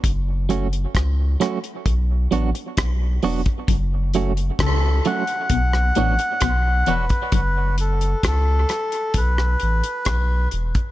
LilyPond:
<<
  \new Staff \with { instrumentName = "Melodica" } { \time 4/4 \key fis \minor \tempo 4 = 66 r1 | r4 a'8 fis''2 b'8 | b'8 a'8 a'4 b'4. r8 | }
  \new Staff \with { instrumentName = "Clean electric guitar" } { \time 4/4 \key fis \minor r8 <fis a cis' fis'>8 r8 <fis a cis' fis'>8 r8 <fis b d' fis'>8 r8 <fis b d' fis'>8 | r8 <fis a cis' fis'>8 r8 <fis a cis' fis'>8 r8 <fis b d' fis'>8 r8 <fis b d' fis'>8 | r1 | }
  \new Staff \with { instrumentName = "Clean electric guitar" } { \clef bass \time 4/4 \key fis \minor r1 | fis,8 r8 cis8 r8 b,8 a,16 r16 b,8 e,16 r16 | fis,8 r2. r8 | }
  \new Staff \with { instrumentName = "Sub bass" } { \clef bass \time 4/4 \key fis \minor fis,,4 cis,8 r8 b,,8 a,,16 r16 b,,8 e,,16 r16 | fis,,4 cis,8 r8 b,,8 a,,16 r16 b,,8 e,,16 r16 | fis,,4 cis,8 r8 b,,8 a,,16 r16 b,,8 e,,16 r16 | }
  \new DrumStaff \with { instrumentName = "Drums" } \drummode { \time 4/4 <hh bd>8 hh16 hh16 <hh bd ss>8 <hh ss>16 hh16 <hh bd>8 hh16 hh16 <hh bd ss>8 hho16 <hh bd>16 | <hh bd>8 hh16 hh16 <hh bd ss>8 hh16 hh16 <hh bd>16 ss16 hh16 hh16 <hh bd ss>8 hh16 <hh bd>16 | <hh bd>8 hh16 hh16 <hh bd ss>8 <hh ss>16 hh16 <hh bd>16 ss16 hh16 hh16 <hh bd ss>8 hh16 <hh bd>16 | }
>>